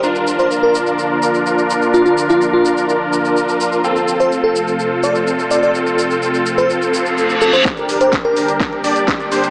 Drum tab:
HH |----------------|----------------|----------------|----------------|
SH |xxxxx-xxx-xxxxxx|xxxxx-xxx-xxxxxx|xxxxx-xxx-xxxxxx|xxxxxxxxxxxxxxxx|
SD |----------------|----------------|----------------|----------------|
BD |----------------|----------------|----------------|----------------|

HH |xxoxxxoxxxoxxxox|
SH |xxxxx-xxx-xxxxxx|
SD |o---o---o---o---|
BD |o---o---o---o---|